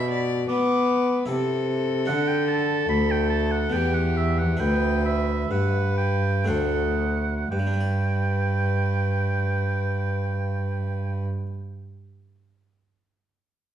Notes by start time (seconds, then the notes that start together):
Already playing: B2 D4 G4 B5
0.10 D5
0.49 B3 B4 D6
1.26 C3 E4 A4
2.05 D3 D4 A4 F#5
2.28 G5
2.48 A5
2.89 D2 B5
3.11 G5
3.30 A5
3.51 F#5
3.70 E2 B3 B4 G5
3.74 E2 G4
3.95 F#5
4.17 E5
4.39 F#5
4.57 D2 D4 B4 G5
4.61 D2
5.05 E5
5.51 G2 B4 F#5
5.98 G5
6.44 D2 A3 D4 A4 C5 F#5
6.48 D2
7.51 G2 B4 G5
7.59 G3
7.67 D4
7.74 B4
7.81 D5